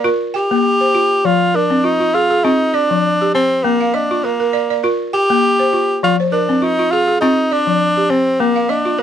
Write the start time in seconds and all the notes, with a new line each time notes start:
Already playing: D5
0.04 F4 A#4
0.34 G4 G5
0.51 A#3
0.81 C5
0.95 F4
1.25 F3 F4
1.54 D4 A#4
1.70 C4
1.84 D#4 F4
2.00 F4
2.14 F4 G#4
2.31 G#4
2.44 C4 D#4 F4
2.74 D4 D5
2.91 F3
3.21 G4
3.35 C4
3.64 A#3
3.80 F5
3.94 D4 D#5
4.11 F4
4.24 A#3 A#4
4.40 A#4
4.53 D5
4.70 D5
4.84 F4 A#4
5.13 G4 G5
5.30 A#3
5.59 C5
5.73 F4
6.03 F3 F4
6.20 C5
6.32 D4 A#4
6.49 C4
6.62 D#4 F4
6.79 F4
6.91 F4 G#4
7.08 G#4
7.21 C4 D#4 F4
7.52 D4 D5
7.67 F3
7.97 G4
8.10 C4
8.40 A#3
8.56 F5
8.69 D4 D#5
8.85 F4
8.99 A#3 A#4